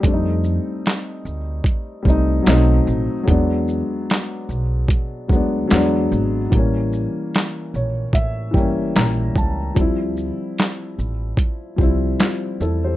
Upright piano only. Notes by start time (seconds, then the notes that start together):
0.00 G3 A3
0.05 C4 D4
0.13 D#4
2.03 G3 A3
2.07 C4 D#4
2.42 F#3 A3
2.47 C4 D#4
3.23 F#3 G#3
3.28 B3 D4
5.28 F#3 G#3
5.33 B3 D4
5.68 F#3 G#3
5.72 B3 D4
6.50 E3 G3
6.55 A#3 C#4
7.75 C#5
8.14 E5
8.51 E3 G3 G5
8.56 A#3 C#4
8.96 A#5
9.38 A5
9.74 F3 G3
9.79 C4 E4
11.76 F3 G3
11.81 C4 E4
12.19 C4 F4
12.62 E4 A4
12.84 G4 C5